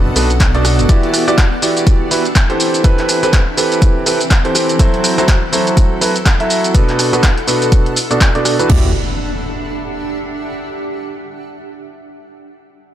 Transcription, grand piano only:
Already playing: B2 D4 F#4 A4 B4
0.16 B2 D4 F#4 A4 B4
0.55 B2 D4 F#4 A4 D5
0.89 E3 E4 F#4 G4 D5
1.28 E3 E4 F#4 G4 D5
1.62 E3 E4 F#4 G4 D5
2.11 E3 E4 F#4 G4 B4
2.50 E3 C4 G4 A4 C5
2.84 E3 C4 G4 A4 B4
3.23 E3 C4 G4 A4 B4
3.57 E3 C4 G4 A4 B4
4.06 E3 C4 G4 A4 B4
4.45 E3 C4 G4 A4 C5
4.79 F#3 E4 F#4 A4 C5
5.18 F#3 E4 F#4 A4 C5
5.52 F#3 E4 F#4 A4 C5
6.01 F#3 E4 F#4 A4 B4
6.40 F#3 E4 F#4 A4 E5
6.74 B2 D4 F#4 A4 B4
7.13 B2 D4 F#4 A4 B4
7.47 B2 D4 F#4 A4 B4
8.11 B2 D4 F#4 A4 D5
8.35 B2 D4 F#4 A4 D5
8.59 E3 D4 F#4 A4 B4
8.70 D5

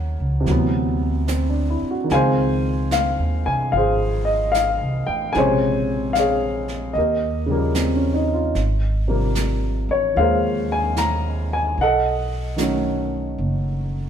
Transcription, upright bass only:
Already playing: D#2
0.20 C#2
0.46 D2
1.82 muted upright bass stroke
2.10 C#2
3.19 D#2
3.46 C2
3.73 G#1
4.81 C2
5.08 A1
5.35 A#1
6.95 D#2
8.55 G#1
9.89 A1
10.16 D#2
11.78 B1
13.38 F#1

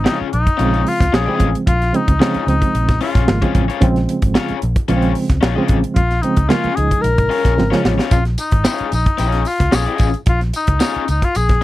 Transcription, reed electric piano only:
Already playing: C#3 F3 G#3 C4
0.59 C3 F3 G#3 C4
0.65 C#3
1.27 C#3 F3 G#3 C4
1.93 C#3 F3 G#3 C4
2.20 C#3 F3 G#3 C4
2.47 C#3 F3 G#3 C4
3.27 C#3 F3 G#3 A#3
3.42 C#3 F3 G#3 C4
3.81 C#3 F3 G#3 C4
4.88 C#3 F3 G#3 B3
4.97 C4
5.56 C#3 F3 G#3 C4
6.23 C#3 F3 G#3 C4
6.49 C#3 F3 G#3 A#3
6.77 C#3 F3 G#3 D#4
7.57 C#3 F3 G#3 C4
7.71 C#3 F3 G#3 C#4

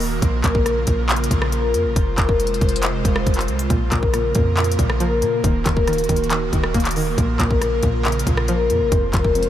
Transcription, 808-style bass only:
Already playing: D#1
0.22 A#1
0.44 A#1
0.88 A#1
1.31 A#1
1.74 F2
1.85 A#1
1.96 F1
2.18 F1
2.61 F1
3.05 F1
3.27 F1
3.48 C2
3.70 A#1
3.92 A#1
4.35 F2
4.79 A#1
5.22 A#2
5.44 D#1
5.66 D#1
6.09 D#1
6.53 D#1
6.74 D#1
7.18 A#1
7.40 A#1
7.83 A#1
8.27 A#1
8.70 F2
8.81 A#1
8.92 F1
9.14 F1

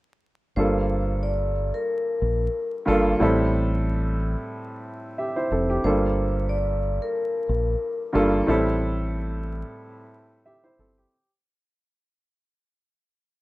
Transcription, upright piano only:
0.56 G2 G3 A#3 F4 A4
2.85 G2 G3 A#3 F4 A4
3.20 A2 G3 C4 E4 A4
5.18 G4 E5
5.36 E4 C5
5.52 C4 A4
5.70 G4
5.84 G2 G3 A#3 F4 A4
8.13 G2 G3 A#3 F4 A4
8.47 A2 G3 C4 E4 A4
10.46 G4 E5
10.64 E4 C5
10.80 C4 A4
10.98 G4

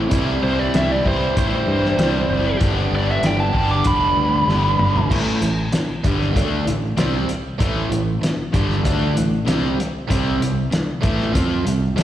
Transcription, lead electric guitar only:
0.43 C5
0.59 D5
0.76 E5
0.92 D5
1.08 C5
1.39 C5
2.96 D5
3.11 E5
3.26 G5
3.40 A5
3.71 D6
3.87 B5

